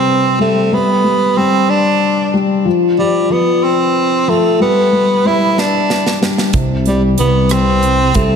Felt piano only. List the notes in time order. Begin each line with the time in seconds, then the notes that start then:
Already playing: C3 G3
0.39 G3
0.71 G3
1.04 G3
1.36 G3
2.34 G3
2.65 F3
2.98 F3
3.30 F3
4.27 F3
4.60 G3
4.92 G3
5.25 G3
6.21 G3
6.54 C3
6.87 G3
7.18 C3
8.15 G3